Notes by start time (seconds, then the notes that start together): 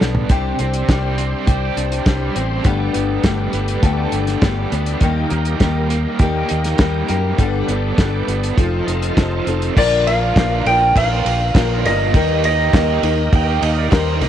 Already playing: G3 D4 A4
0.00 B1 G3 B3 D4 A4, snare
0.15 floor tom
0.29 C2 C3 G3 C4 D4 G4 C5, kick, closed hi-hat
0.59 C2 C4 D4 G4, closed hi-hat
0.74 closed hi-hat
0.89 C2 G3 C4 D4 G4, kick, snare, closed hi-hat
1.18 C4, closed hi-hat
1.47 C2 C3 G3 C4 D4 G4, kick, closed hi-hat
1.77 C2 D4, closed hi-hat
1.92 closed hi-hat
2.06 C2 G3 C4 D4 G4, kick, snare, closed hi-hat
2.35 A1 C4 D4 G4, closed hi-hat
2.64 G1 G2 D3 G3 A3 B3 D4 G4 A4, kick, closed hi-hat
2.94 G1 B3, closed hi-hat
3.23 G1 G3 A3 B3 D4 G4, kick, snare, closed hi-hat
3.53 G1 B3, closed hi-hat
3.68 closed hi-hat
3.83 D2 G2 D3 A3 B3 D4 G4 A4, kick, closed hi-hat
4.12 G1 D4, closed hi-hat
4.27 snare, closed hi-hat
4.42 G1 G3 A3 B3 D4 G4, kick, snare, closed hi-hat
4.71 D2 A3 B3 D4 G4, closed hi-hat
4.86 closed hi-hat
5.01 D#2 D#3 G3 A#3 D#4 G4 A#4, kick, closed hi-hat
5.30 D#2 A#3, closed hi-hat
5.45 closed hi-hat
5.60 D#2 G3 A#3 D#4 G4, kick, snare, closed hi-hat
5.90 A#3, closed hi-hat
6.19 D#2 D#3 G3 A#3 D#4 G4, kick, closed hi-hat
6.49 D#2 D#4, closed hi-hat
6.64 snare, closed hi-hat
6.77 D#2 G3 A#3 D#4, kick, snare, closed hi-hat
6.82 G4
7.07 F#2 A#3 D#4 G4, closed hi-hat
7.11 A#3
7.37 G1 G2 D3 G3 B3 D4 G4 A4, kick, closed hi-hat
7.67 G1 B3 D4 A4, closed hi-hat
7.71 G3 B3
7.97 G1 G3 B3 D4 A4, kick, snare, closed hi-hat
8.27 G1 B3, closed hi-hat
8.43 closed hi-hat
8.56 F1 F3 C4 D#4 F4 A4, kick, closed hi-hat
8.87 F1 D#4, closed hi-hat
9.02 closed hi-hat
9.16 F1 F3 C4 D#4, kick, snare, closed hi-hat
9.20 A4
9.46 F1 C4 D#4 A4, closed hi-hat
9.50 C4
9.62 closed hi-hat
9.75 A#1 A#2 D3 F3 A#3 D4 F4 A#4 D5, kick, crash
10.07 F3 A#3 D4 A#4 F5, ride
10.20 A#3 D4 F4
10.35 A#1 A#2 D3 F3 A#3 D4 F4, kick, snare, ride
10.39 A#4
10.50 A#3 D4 F4
10.65 A#1 F3 A#3 D4 A#4 G5, ride
10.81 muted overdriven electric guitar stroke
10.96 A#1 F5, kick, ride
11.11 A#3 D4 F4
11.25 A#1 D3 A#3 D4 F4, ride
11.40 muted overdriven electric guitar stroke
11.54 A#1 A#2 D3 F3 A#3 D4 F4 A#4, kick, snare, ride
11.84 G1 D3 F3 A#3 D4 F4 A#4 D#5, snare, ride
11.99 A#3 D4 F4
12.13 D#2 D#3 G3 A#3 D#4 G4 A#4, kick, ride
12.44 A#3 D#4 A#4 D#5, ride
12.58 A#3 D#4 G4
12.73 D#2 D#3 G3 A#3 D#4 G4 A#4, kick, snare, ride
12.87 A#3 D#4 G4
13.03 D#2 A#3 D#4 A#4, ride
13.17 muted overdriven electric guitar stroke
13.32 D#2 G5, kick, ride
13.47 A#3 D#4 G4
13.61 D#2 D#3 A#3 D#4 G4 D#5, ride
13.77 D5, muted overdriven electric guitar stroke
13.90 D#2 D#3 G3 A#3 D#4 G4 A#4 C5, kick, snare, ride
14.21 C2 D#3 A#3 D#4 G4 A#4, snare, ride